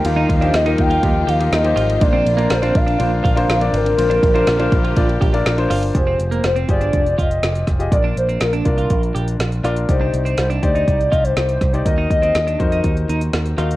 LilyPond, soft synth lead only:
\new Staff \with { instrumentName = "Soft synth lead" } { \time 4/4 \key bes \mixolydian \tempo 4 = 122 f''4 ees''8 g''4 f''8 ees''4 | d''4 c''8 f''2 bes'8~ | bes'2. r4 | c''4 c''8 d''4 ees''4 r8 |
d''8 c''8 bes'8 bes'4. r4 | c''4 c''8 d''4 ees''16 c''16 c''8. d''16 | ees''8 ees''4. r2 | }